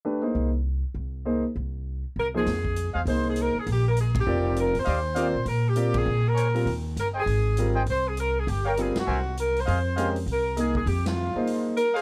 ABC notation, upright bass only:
X:1
M:4/4
L:1/8
Q:"Swing" 1/4=200
K:Fm
V:1 name="Upright bass" clef=bass
z2 C,,3 z C,,2- | C,, z C,,3 z C,,2 | F,,3 =E,, C,,3 z | B,,,3 A,,, F,,,3 =E,, |
E,,3 B,, B,,4 | B,,4 E,,2 G,,,2 | A,,,4 C,,4 | G,,,3 z C,,4 |
F,,4 C,,4 | F,,3 z4 z |]